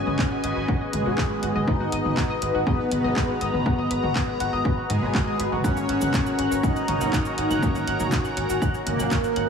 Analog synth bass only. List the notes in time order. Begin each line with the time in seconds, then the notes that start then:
0.07 G#1
0.44 G#1
0.56 G#1
0.93 G#1
1.06 G#1
1.43 G#1
1.56 G#1
1.80 G#1
1.92 G#1
2.05 G#1
2.42 G#1
2.55 G#1
2.92 G#1
3.04 G#1
3.41 G#1
3.54 G#1
3.79 G#1
3.91 G#1
4.03 G#1
4.40 G#1
4.53 G#1
4.90 G#2
5.02 G#1
5.39 G#1
5.52 G#1
5.77 G#1
5.89 G#1
6.02 G#1
6.39 G#1
6.51 G#1
6.88 G#1
7.01 G#1
7.38 G#1
7.50 G#1
7.75 G#1
7.87 G#1
8.00 G#1
8.37 G#1
8.50 G#1
8.87 G#1
8.99 G#1
9.36 G#1